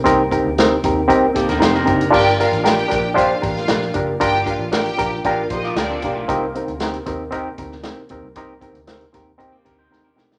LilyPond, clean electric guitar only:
\new Staff \with { instrumentName = "Clean electric guitar" } { \time 4/4 \key g \minor \tempo 4 = 116 r2 r8 <bes g'>16 <d' bes'>16 <ees' c''>16 <d' bes'>8. | r1 | r2 r8 c''16 <f' d''>16 <d' bes'>16 <c' a'>16 <bes g'>16 <a f'>16~ | <a f'>16 r2. r8. |
r2 r16 <bes g'>16 <d' bes'>16 <ees' c''>8 <d' bes'>8. | }